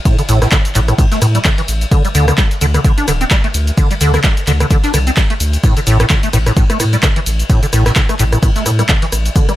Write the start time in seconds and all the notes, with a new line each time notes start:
0.05 A2, kick, closed hi-hat, ride, cabasa
0.18 D3, closed hi-hat, ride, cabasa
0.29 A1 A2, open hi-hat, ride, cabasa
0.42 A2, cross-stick, snare, closed hi-hat, cabasa
0.51 D3, kick, snare, clap, closed hi-hat, ride, cabasa
0.65 closed hi-hat, cabasa
0.75 A1 A2, clap, open hi-hat, ride, cabasa
0.88 A2, cross-stick, closed hi-hat, cabasa
0.98 A2, kick, closed hi-hat, ride, cabasa
1.11 A3, snare, closed hi-hat, cabasa
1.22 A2, cross-stick, open hi-hat, ride, cabasa
1.35 G3, closed hi-hat, cabasa
1.44 D3, kick, snare, clap, closed hi-hat, ride, cabasa
1.58 E3, closed hi-hat
1.68 A1, open hi-hat, ride, cabasa
1.81 closed hi-hat, ride, cabasa
1.92 D3, kick, closed hi-hat, ride, cabasa
2.05 G3, closed hi-hat, cabasa
2.15 D2 D3, open hi-hat, ride, cabasa
2.28 D3, cross-stick, closed hi-hat, cabasa
2.37 G3, kick, snare, clap, closed hi-hat, ride, cabasa
2.51 closed hi-hat, cabasa
2.61 D2 D3, open hi-hat, ride, cabasa
2.74 D3, cross-stick, closed hi-hat, cabasa
2.84 D3, kick, closed hi-hat, ride, cabasa
2.98 D4, closed hi-hat, cabasa
3.08 D1 D3, cross-stick, open hi-hat, ride, cabasa
3.21 C4, closed hi-hat, cabasa
3.30 G3, kick, snare, clap, closed hi-hat, ride, cabasa
3.44 A3, closed hi-hat
3.54 D2, open hi-hat, ride, cabasa
3.67 closed hi-hat, cabasa
3.78 D3, kick, closed hi-hat, ride, cabasa
3.91 G3, closed hi-hat, ride, cabasa
4.01 D2 D3, open hi-hat, ride, cabasa
4.14 D3, cross-stick, snare, closed hi-hat, cabasa
4.23 G3, kick, snare, clap, closed hi-hat, ride, cabasa
4.37 closed hi-hat, cabasa
4.47 D2 D3, clap, open hi-hat, ride, cabasa
4.60 D3, cross-stick, closed hi-hat, cabasa
4.71 D3, kick, closed hi-hat, ride, cabasa
4.83 D4, snare, closed hi-hat, cabasa
4.94 C2 D3, cross-stick, open hi-hat, ride, cabasa
5.07 C4, closed hi-hat, cabasa
5.16 G3, kick, snare, clap, closed hi-hat, ride, cabasa
5.30 A3, closed hi-hat
5.40 D2, open hi-hat, ride, cabasa
5.53 closed hi-hat, ride, cabasa
5.63 A2, kick, cross-stick, closed hi-hat, ride, cabasa
5.77 D3, closed hi-hat, cabasa
5.87 A1 A2, open hi-hat, ride, cabasa
6.00 A2, cross-stick, closed hi-hat, cabasa
6.09 D3, kick, snare, clap, closed hi-hat, ride, cabasa
6.23 A3, closed hi-hat, cabasa
6.33 A1 A2, cross-stick, open hi-hat, ride, cabasa
6.46 A2, cross-stick, closed hi-hat, cabasa
6.57 A2, kick, closed hi-hat, ride, cabasa
6.70 A3, cross-stick, closed hi-hat, cabasa
6.80 A2, cross-stick, open hi-hat, ride, cabasa
6.93 G3, closed hi-hat, cabasa
7.03 D3, kick, cross-stick, snare, clap, closed hi-hat, ride, cabasa
7.16 E3, closed hi-hat
7.26 A1, open hi-hat, ride, cabasa
7.39 closed hi-hat, cabasa
7.49 A2, kick, closed hi-hat, ride, cabasa
7.63 D3, closed hi-hat, ride, cabasa
7.72 A1 A2, cross-stick, open hi-hat, ride, cabasa
7.86 cross-stick, snare, closed hi-hat, cabasa
7.96 D3, kick, snare, clap, closed hi-hat, ride, cabasa
8.09 A3, cross-stick, closed hi-hat, cabasa
8.19 A1 A2, clap, open hi-hat, ride, cabasa
8.32 A2, cross-stick, closed hi-hat, cabasa
8.43 A2, kick, cross-stick, closed hi-hat, ride, cabasa
8.56 A3, snare, closed hi-hat, cabasa
8.65 A2, cross-stick, open hi-hat, ride, cabasa
8.79 G3, cross-stick, closed hi-hat, cabasa
8.89 D3, kick, snare, clap, closed hi-hat, ride, cabasa
9.02 E3, closed hi-hat
9.12 A1, cross-stick, open hi-hat, ride, cabasa
9.26 closed hi-hat, ride, cabasa
9.36 D3, kick, closed hi-hat, ride, cabasa
9.49 G3, cross-stick, closed hi-hat, cabasa